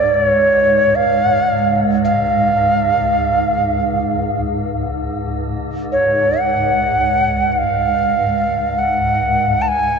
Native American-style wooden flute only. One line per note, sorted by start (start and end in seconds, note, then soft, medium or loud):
0.00 0.14 D5 medium
0.14 0.25 D5 medium
0.25 0.97 C#5 medium
0.95 1.79 F5 medium
2.05 4.43 F5 medium
5.92 6.41 C#5 medium
6.39 7.52 F#5 medium
7.52 7.60 F#5 medium
7.58 8.80 F5 medium
8.79 9.63 F#5 medium
9.62 9.70 A5 soft
9.68 9.99 G#5 medium